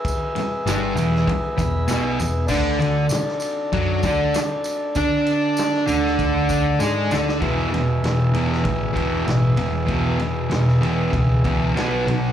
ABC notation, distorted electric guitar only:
X:1
M:4/4
L:1/8
Q:1/4=97
K:Emix
V:1 name="Distorted electric guitar" clef=bass
z2 [=G,,=G,] [E,,E,] z E,, [B,,B,] E,, | [D,D] D, z2 [F,F] [D,D] z2 | [Dd]3 [D,D]3 [G,G] [D,D] | [E,,B,,E,] [E,,B,,] [E,,B,,] [E,,B,,E,] [E,,B,,] [E,,B,,E,] [E,,B,,] [E,,B,,] |
[E,,B,,E,] [E,,B,,] [E,,B,,] [E,,B,,E,] [E,,B,,] [E,,B,,E,] [B,,F,B,] [B,,F,] |]